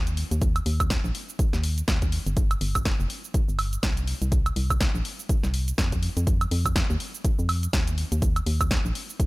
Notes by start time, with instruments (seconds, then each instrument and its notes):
Already playing: fm bass D#2
0.07 closed hi-hat, shaker
0.17 open hi-hat
0.31 fm bass D#2, closed hi-hat, shaker
0.42 kick, closed hi-hat, shaker
0.56 closed hi-hat, high woodblock, shaker
0.66 fm bass D#2, open hi-hat
0.80 kick, closed hi-hat, high woodblock, shaker
0.90 kick, snare, closed hi-hat, shaker
1.04 fm bass A#1, shaker
1.15 open hi-hat
1.29 shaker
1.39 kick, closed hi-hat, shaker
1.53 fm bass D#2, snare, shaker
1.64 open hi-hat
1.78 closed hi-hat, shaker
1.88 fm bass D#2, kick, snare, closed hi-hat, shaker
2.02 kick, closed hi-hat, shaker
2.12 open hi-hat
2.26 fm bass G1, closed hi-hat, shaker
2.37 kick, closed hi-hat, shaker
2.51 closed hi-hat, high woodblock, shaker
2.61 fm bass G1, open hi-hat
2.75 kick, closed hi-hat, high woodblock, shaker
2.85 kick, snare, closed hi-hat, shaker
3.00 fm bass F1, shaker
3.10 open hi-hat
3.24 shaker
3.34 kick, closed hi-hat, shaker
3.49 fm bass G1, shaker
3.59 open hi-hat, high woodblock
3.73 closed hi-hat, shaker
3.83 fm bass C2, kick, snare, closed hi-hat, shaker
3.97 closed hi-hat, shaker
4.07 open hi-hat
4.22 fm bass C2, closed hi-hat, shaker
4.32 kick, closed hi-hat, shaker
4.46 closed hi-hat, high woodblock, shaker
4.56 fm bass C2, open hi-hat
4.70 kick, closed hi-hat, high woodblock, shaker
4.81 kick, snare, closed hi-hat, shaker
4.95 fm bass A#1, shaker
5.05 open hi-hat
5.19 shaker
5.29 kick, closed hi-hat, shaker
5.43 fm bass C2, snare, shaker
5.54 open hi-hat
5.68 closed hi-hat, shaker
5.78 fm bass F2, kick, snare, closed hi-hat, shaker
5.92 kick, closed hi-hat, shaker
6.03 open hi-hat
6.17 fm bass F2, closed hi-hat, shaker
6.27 kick, closed hi-hat, shaker
6.41 closed hi-hat, high woodblock, shaker
6.51 fm bass F2, open hi-hat
6.65 kick, closed hi-hat, high woodblock, shaker
6.76 kick, snare, closed hi-hat, shaker
6.90 fm bass D#2, shaker
7.00 open hi-hat
7.15 shaker
7.25 kick, closed hi-hat, shaker
7.39 fm bass F2, shaker
7.49 open hi-hat, high woodblock
7.63 closed hi-hat, shaker
7.73 fm bass D#2, kick, snare, closed hi-hat, shaker
7.88 closed hi-hat, shaker
7.98 open hi-hat
8.12 fm bass D#2, closed hi-hat, shaker
8.22 kick, closed hi-hat, shaker
8.36 closed hi-hat, high woodblock, shaker
8.46 fm bass D#2, open hi-hat
8.61 kick, closed hi-hat, high woodblock, shaker
8.71 kick, snare, closed hi-hat, shaker
8.85 fm bass A#1, shaker
8.95 open hi-hat
9.10 shaker
9.20 kick, closed hi-hat, shaker